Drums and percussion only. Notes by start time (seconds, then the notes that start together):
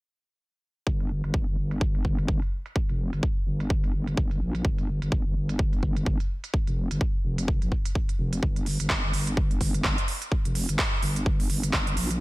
0.87 kick
1.00 closed hi-hat
1.24 closed hi-hat
1.34 kick
1.71 closed hi-hat
1.81 kick
1.95 closed hi-hat
2.05 kick
2.19 closed hi-hat
2.28 kick
2.42 closed hi-hat
2.66 closed hi-hat
2.76 kick
2.89 closed hi-hat
3.13 closed hi-hat
3.23 kick
3.60 closed hi-hat
3.70 kick
3.84 closed hi-hat
4.07 closed hi-hat
4.17 kick
4.31 closed hi-hat
4.55 closed hi-hat
4.65 kick
4.78 closed hi-hat
5.02 closed hi-hat
5.12 kick
5.49 closed hi-hat
5.59 kick
5.73 closed hi-hat
5.83 kick
5.97 closed hi-hat
6.06 kick
6.20 closed hi-hat
6.44 closed hi-hat
6.54 kick
6.67 closed hi-hat
6.91 closed hi-hat
7.01 kick
7.38 closed hi-hat
7.48 kick
7.62 closed hi-hat
7.72 kick
7.85 closed hi-hat
7.95 kick
8.09 closed hi-hat
8.33 closed hi-hat
8.43 kick
8.56 closed hi-hat
8.66 open hi-hat
8.80 closed hi-hat
8.90 kick, clap
9.13 open hi-hat
9.27 closed hi-hat
9.37 kick
9.51 closed hi-hat
9.61 kick, open hi-hat
9.74 closed hi-hat
9.84 kick, clap
9.98 closed hi-hat
10.08 open hi-hat
10.22 closed hi-hat
10.32 kick
10.45 closed hi-hat
10.55 open hi-hat
10.69 closed hi-hat
10.79 kick, clap
11.02 open hi-hat
11.16 closed hi-hat
11.26 kick
11.40 open hi-hat
11.50 open hi-hat
11.63 closed hi-hat
11.73 kick, clap
11.87 closed hi-hat
11.97 open hi-hat
12.11 closed hi-hat